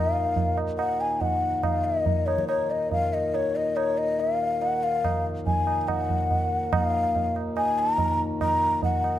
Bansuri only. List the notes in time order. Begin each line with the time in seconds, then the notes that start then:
Already playing: D#5
0.13 F5
0.78 F#5
1.01 G#5
1.21 F#5
1.64 F5
1.84 D#5
2.26 C#5
2.48 C#5
2.71 D#5
2.92 F5
3.13 D#5
3.35 C#5
3.56 D#5
3.76 C#5
3.98 D#5
4.20 F5
4.62 F#5
4.83 F5
5.47 G#5
5.81 G#5
5.88 F#5
6.73 F5
7.57 G#5
7.79 A#5
8.42 A#5
8.84 F#5